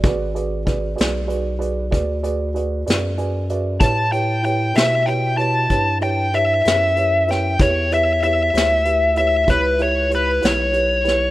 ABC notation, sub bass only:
X:1
M:12/8
L:1/8
Q:3/8=64
K:A
V:1 name="Sub bass" clef=bass
G,,,3 B,,,3 D,,3 F,,3 | A,,3 B,,3 =G,,3 F,,3 | E,,3 D,,3 C,,3 B,,,3 |]